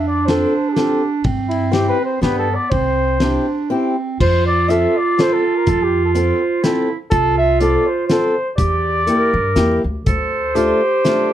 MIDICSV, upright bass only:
0, 0, Header, 1, 2, 480
1, 0, Start_track
1, 0, Key_signature, 0, "major"
1, 0, Tempo, 487805
1, 1230, Time_signature, 3, 2, 24, 8
1, 4134, Key_signature, -1, "major"
1, 8922, Tempo, 495050
1, 11116, End_track
2, 0, Start_track
2, 0, Title_t, "Upright bass"
2, 0, Program_c, 0, 32
2, 0, Note_on_c, 0, 41, 78
2, 423, Note_off_c, 0, 41, 0
2, 1227, Note_on_c, 0, 43, 76
2, 1849, Note_off_c, 0, 43, 0
2, 2182, Note_on_c, 0, 43, 66
2, 2499, Note_off_c, 0, 43, 0
2, 2676, Note_on_c, 0, 36, 76
2, 3304, Note_off_c, 0, 36, 0
2, 4136, Note_on_c, 0, 41, 81
2, 4766, Note_off_c, 0, 41, 0
2, 5583, Note_on_c, 0, 41, 89
2, 6199, Note_off_c, 0, 41, 0
2, 7004, Note_on_c, 0, 36, 88
2, 7627, Note_off_c, 0, 36, 0
2, 8449, Note_on_c, 0, 40, 88
2, 8931, Note_off_c, 0, 40, 0
2, 9182, Note_on_c, 0, 43, 82
2, 9381, Note_off_c, 0, 43, 0
2, 9400, Note_on_c, 0, 40, 60
2, 9641, Note_off_c, 0, 40, 0
2, 9674, Note_on_c, 0, 38, 76
2, 9871, Note_off_c, 0, 38, 0
2, 9889, Note_on_c, 0, 38, 79
2, 10510, Note_off_c, 0, 38, 0
2, 11116, End_track
0, 0, End_of_file